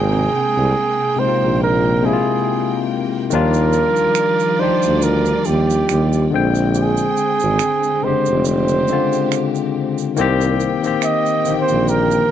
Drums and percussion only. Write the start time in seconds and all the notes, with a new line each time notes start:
3.31 shaker
3.54 shaker
3.73 shaker
3.96 shaker
4.15 finger snap, shaker
4.40 shaker
4.82 shaker
5.02 shaker
5.25 shaker
5.45 shaker
5.70 shaker
5.89 finger snap, shaker
6.13 shaker
6.55 shaker
6.74 shaker
6.97 shaker
7.17 shaker
7.40 shaker
7.59 finger snap, shaker
7.83 shaker
8.26 shaker
8.45 shaker
8.68 shaker
8.88 shaker
9.13 shaker
9.32 finger snap, shaker
9.55 shaker
9.98 shaker
10.17 shaker
10.41 shaker
10.60 shaker
10.84 shaker
11.02 finger snap, shaker
11.26 shaker
11.45 shaker
11.68 shaker
11.88 shaker
12.11 shaker